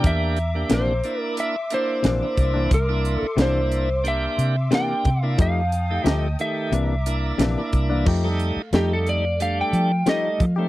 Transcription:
Already playing: A#3 D4 G4 E5 A#5 D6
0.04 E2 E5, kick, closed hi-hat
0.36 closed hi-hat
0.55 A#3 D4 G4
0.70 A#1 C3 E3 A#3 D4, snare, closed hi-hat
0.74 C5
1.04 A#3 D4 E4, closed hi-hat
1.20 A#4
1.36 C6, closed hi-hat
1.40 E5
1.70 A#3 D4 E4 C5, closed hi-hat
2.03 A#1 C3 E3 A#3 D4, snare, closed hi-hat
2.22 A#3 D4 E4
2.37 C2, kick, closed hi-hat
2.54 E3 A#3 D4
2.71 C2 A#4, kick, closed hi-hat
2.88 A#3 D4 E4
3.05 closed hi-hat
3.17 A4
3.22 muted fingered electric bass stroke
3.37 C2 C3 E3 A#3 D4 E4, snare, closed hi-hat
3.42 C5
3.72 closed hi-hat
4.04 A#3 D4 G4, closed hi-hat
4.08 E5
4.38 C3, closed hi-hat
4.71 C3 E3 A#3 D4 G4 G5, snare, closed hi-hat
5.05 C3, kick, closed hi-hat
5.21 A#3 D4 E4 F5
5.38 F2 F3 A3 D#4 G4 F5 G5 A5 D#6, kick, closed hi-hat
5.72 closed hi-hat
5.90 A3 D#4 G4
6.04 D2 F3 A3 D#4 G4, snare, closed hi-hat
6.09 D#5
6.39 D#3 A3 G4 E5, closed hi-hat
6.72 C2 C3 E3 A#3 D4 E5 A#5 D6, closed hi-hat
7.06 A#3 D4 E4, closed hi-hat
7.38 A#1 C3 E3 A#3 D4, snare, closed hi-hat
7.58 A#3 D4 E4
7.73 C2, kick, closed hi-hat
7.90 E3 A#3 D4
8.06 F2 F3 A3 D#4 G4 F5, kick, crash
8.24 G3 A3 D#4
8.40 closed hi-hat
8.57 muted fingered electric bass stroke
8.73 F2 F3 G3 A3 D#4 G4, snare, closed hi-hat
8.93 A4
9.07 D5, closed hi-hat
9.40 G3 A3 D4 F5, closed hi-hat
9.61 G5
9.73 F3, closed hi-hat
10.06 F3 G3 A3 D#4 G4 D#5, snare, closed hi-hat
10.40 F3, kick, closed hi-hat
10.56 G3 A3 C4 D#4 G4

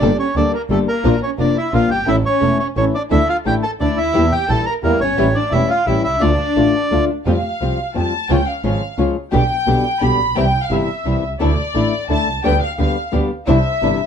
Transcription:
Already playing: D4 D5
0.02 G1 D3 G3 A#3 D4 G4 A4
0.19 C#4 C#5
0.35 D2 D3 G3 A#3 D4 G4 A4 D5
0.53 A#3 A#4
0.69 G1 D3 G3 A3 A#3 D4 G4 A4
0.88 A#3 A#4
1.04 A#1 F3 A#3 D4 F4 A#4
1.22 C#4 C#5
1.38 F1 F3 A#3 D4 F4 A#4 D5
1.56 E4 E5
1.72 A#1 F3 A#3 D4 F4 A#4 F5
1.90 G1 G4 G5
2.07 A1 E3 A3 C#4 E4 A4 E5
2.24 C#4 C#5
2.41 E1 E3 A3 C#4 E4 A4
2.59 C#4 C#5
2.76 A1 E3 A3 C#4 E4 A4 C#5
2.94 D4 D5
3.10 D2 D3 A3 D4 E4 A4 E5
3.28 F4 F5
3.45 A1 D3 A3 D4 E4 G4 A4 G5
3.63 A4 A5
3.79 D2 D3 A3 D4 E4 A4 D5
3.97 D2 E4 E5
4.14 E2 E3 G3 A#3 E4 G4
4.32 G4 G5
4.48 A#1 E3 G3 A#3 E4 G4 A4 A5
4.66 A#4 A#5
4.83 E2 E3 G3 A#3 E4 G4 A#4
5.00 G1 C#4 C#5
5.17 A1 E3 G3 A3 C#4 E4 G4
5.35 D4 D5
5.52 E1 E3 G3 A3 C#4 E4 G4 E5
5.70 F4 F5
5.86 A1 E3 G3 A3 C#4 E4 G4 E5
6.04 C2 E4 E5
6.21 D2 D3 A3 D4 F4 D5
6.56 A1 D3 A3 D4 F4
6.91 D2 D3 A3 D4 F4
7.26 F2 F3 G3 A3 C4 F4 G4 F5
7.61 C2 F3 G3 A3 C4 F4 G4
7.94 F2 F3 G3 A3 C4 F4 G4 A5
8.30 C#2 C#3 F3 G#3 C#4 F4 G#4 G5
8.48 F5
8.63 G#1 C#3 F3 G#3 C#4 F4 G#4 F5
8.98 C#2 C#3 F3 G#3 C#4 F4 G#4
9.32 B1 B2 D3 G3 B3 D4 G4 G5
9.67 B1 B2 D3 G3 B3 D4 G4
10.01 B1 B2 D3 G3 B3 D4 G4 B5
10.19 A#1
10.35 C2 C3 E3 G3 C4 E4 G4 G5
10.62 F5
10.70 G1 C3 E3 G3 C4 E4 G4 E5
11.05 C2 C3 E3 G3 C4 E4 G4
11.22 C2
11.40 D2 D3 A3 D4 E4 A4 D5
11.74 A1 D3 A3 D4 E4 A4
12.09 D2 D3 A3 D4 E4 A4 A5
12.27 C2
12.44 D2 D3 G3 B3 D4 G4 B4 G5
12.62 F5
12.78 D2 D3 G3 B3 D4 G4 B4 F5
13.12 D2 D3 G3 B3 D4 G4 B4
13.47 C2 C3 E3 G3 D4 E4 C5 E5
13.82 G1 C3 E3 G3 D4 E4 C5

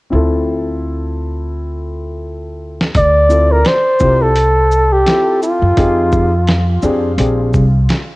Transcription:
0.10 D2 C4 E4 F4
0.15 A4
2.81 snare
2.95 D2 D5, kick, closed hi-hat
3.29 C4 E4 F4 A4, shaker
3.52 A#4
3.65 C5, snare, closed hi-hat
4.00 C2 C4 E4 F4 G4, kick, shaker
4.22 A4
4.36 closed hi-hat
4.72 shaker
4.92 G4
5.06 C4 E4 F4 A4, snare, closed hi-hat
5.43 F4, shaker
5.62 F#2
5.76 F2 C4 D#4 G4 G#4, kick, closed hi-hat
6.12 kick, shaker
6.47 snare, closed hi-hat
6.82 F2 C4 D4 G4 G#4, shaker
7.18 A#1 C4 D4 G4 G#4, closed hi-hat
7.54 C2, kick, shaker
7.89 snare, closed hi-hat

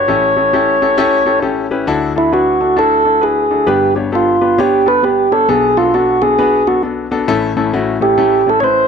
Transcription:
Already playing: C#5
0.08 A1 A2 C#4 E4 G4 A4
0.36 C#4 E4 G4 A4
0.53 C#4 E4 G4 A4
0.82 C#4 E4 G4 A4
0.97 C#4 E4 G4 A4
1.26 C#4 E4 G4 A4
1.42 C#4 E4 G4 A4
1.71 C#4 E4 G4 B4
1.87 D2 D3 D4 E4 F#4 A4
2.15 D4 E4 F#4 A4
2.32 D4 E4 F#4 B4
2.60 D4 E4 F#4 A4
2.76 D4 E4 F#4 A4
3.05 D4 E4 F#4 A4
3.21 D4 E4 F#4 G#4 B4
3.50 D4 E4 F#4 A4
3.66 G1 G2 B3 D4 G4 B4
3.96 B3 D4 G4 C#5
4.12 B3 D4 F4 G4 A4
4.41 B3 D4 G4 B4
4.58 B3 D4 G4 C#5
4.86 B3 D4 G4 A4 B4
5.03 B3 D4 G4 B4
5.31 B3 D4 G4 A4 C#5
5.48 B1 B2 B3 D4 F#4 G#4 A4
5.77 B3 D4 F4 F#4 A4
5.94 B3 D4 F#4 A4
6.22 B3 D4 F#4 G#4 A4
6.38 B3 D4 F#4 B4
6.67 B3 D4 F#4 A4
6.83 B3 D4 F#4 A4
7.11 B3 D4 F#4 A4
7.28 A1 A2 A3 C#4 E4 A4
7.57 A3 C#4 E4 A4
7.73 A3 C#4 E4 F#4
8.01 A3 C#4 E4 G4 A4
8.18 A3 C#4 E4 A4
8.46 A3 C#4 E4 A4
8.60 A3 C#4 E4 B4 C5 C#5

